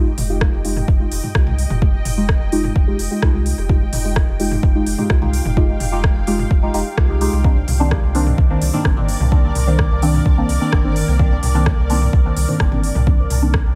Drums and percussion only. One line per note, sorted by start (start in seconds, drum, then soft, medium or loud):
0.18 open hi-hat medium
0.18 mid tom medium
0.41 kick loud
0.41 cross-stick medium
0.65 open hi-hat medium
0.77 high tom medium
0.88 kick loud
1.12 open hi-hat medium
1.23 high tom medium
1.35 kick loud
1.35 cross-stick medium
1.47 mid tom medium
1.58 open hi-hat medium
1.70 mid tom loud
1.82 kick loud
1.82 high tom medium
2.05 open hi-hat medium
2.05 mid tom medium
2.29 kick loud
2.29 cross-stick medium
2.52 open hi-hat medium
2.64 high tom medium
2.76 kick loud
2.99 open hi-hat medium
3.22 kick loud
3.22 cross-stick medium
3.46 open hi-hat medium
3.69 kick loud
3.69 high tom medium
3.93 open hi-hat medium
3.93 mid tom medium
4.16 kick loud
4.16 cross-stick medium
4.40 open hi-hat medium
4.52 high tom medium
4.63 kick loud
4.87 open hi-hat medium
4.98 high tom medium
5.10 kick loud
5.10 cross-stick medium
5.22 mid tom medium
5.33 open hi-hat medium
5.45 mid tom medium
5.57 kick loud
5.57 high tom medium
5.80 open hi-hat medium
5.80 mid tom medium
6.04 kick loud
6.04 cross-stick medium
6.27 open hi-hat medium
6.39 high tom medium
6.51 kick loud
6.74 open hi-hat medium
6.98 kick loud
6.98 cross-stick medium
7.21 open hi-hat medium
7.44 kick loud
7.44 high tom medium
7.68 open hi-hat medium
7.68 mid tom medium
7.91 kick loud
7.91 cross-stick medium
8.15 open hi-hat medium
8.27 high tom medium
8.38 kick loud
8.62 open hi-hat medium
8.73 high tom medium
8.85 kick loud
8.85 cross-stick medium
8.97 mid tom medium
9.08 open hi-hat medium
9.20 mid tom medium
9.32 kick loud
9.32 high tom medium
9.55 open hi-hat medium
9.55 mid tom medium
9.79 kick loud
9.79 cross-stick medium
10.02 open hi-hat medium
10.14 high tom medium
10.26 kick loud
10.49 open hi-hat medium
10.73 kick loud
10.73 cross-stick medium
10.96 open hi-hat medium
11.19 kick loud
11.19 high tom medium
11.43 open hi-hat medium
11.43 mid tom medium
11.66 kick loud
11.66 cross-stick medium
11.90 open hi-hat medium
12.02 high tom medium
12.13 kick loud
12.37 open hi-hat medium
12.48 high tom soft
12.60 kick loud
12.60 cross-stick medium
12.72 mid tom medium
12.83 open hi-hat medium
12.95 mid tom medium
13.07 kick loud
13.07 high tom medium
13.30 open hi-hat medium
13.30 mid tom medium
13.42 high tom soft
13.54 kick loud
13.54 cross-stick medium